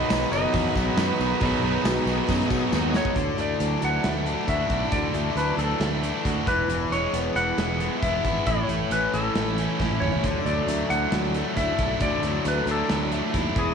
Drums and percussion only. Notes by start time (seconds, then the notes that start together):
0.10 snare, open hi-hat, tambourine
0.33 tambourine
0.54 kick, open hi-hat, tambourine
0.76 kick, tambourine
0.97 snare, open hi-hat, tambourine
1.21 tambourine
1.41 kick, open hi-hat, tambourine
1.85 snare, open hi-hat, tambourine
2.07 tambourine
2.29 kick, open hi-hat, tambourine
2.40 snare
2.50 kick, tambourine
2.73 snare, tambourine
2.94 snare, tambourine
3.05 kick
3.16 kick, closed hi-hat
3.38 closed hi-hat
3.60 closed hi-hat
3.82 closed hi-hat
4.04 snare, closed hi-hat
4.26 closed hi-hat
4.48 kick, closed hi-hat
4.70 kick, closed hi-hat
4.92 kick, closed hi-hat
5.14 closed hi-hat
5.37 closed hi-hat
5.59 closed hi-hat
5.81 snare, closed hi-hat
6.03 closed hi-hat
6.25 kick, closed hi-hat
6.47 kick, snare, closed hi-hat
6.70 closed hi-hat
6.92 closed hi-hat
7.14 closed hi-hat
7.36 closed hi-hat
7.58 snare, closed hi-hat
7.80 closed hi-hat
8.02 kick, closed hi-hat
8.25 kick, closed hi-hat
8.46 kick, closed hi-hat
8.69 closed hi-hat
8.91 closed hi-hat
9.14 closed hi-hat
9.35 snare, closed hi-hat
9.58 closed hi-hat
9.80 kick, snare
9.91 high tom
10.02 mid tom
10.12 floor tom
10.24 kick, closed hi-hat
10.46 closed hi-hat
10.68 closed hi-hat
10.90 closed hi-hat
11.12 snare, closed hi-hat
11.34 closed hi-hat
11.57 kick, closed hi-hat
11.78 kick, closed hi-hat
12.00 kick, closed hi-hat
12.23 closed hi-hat
12.45 closed hi-hat
12.67 closed hi-hat
12.89 snare, closed hi-hat
13.12 closed hi-hat
13.34 kick, closed hi-hat
13.56 kick, closed hi-hat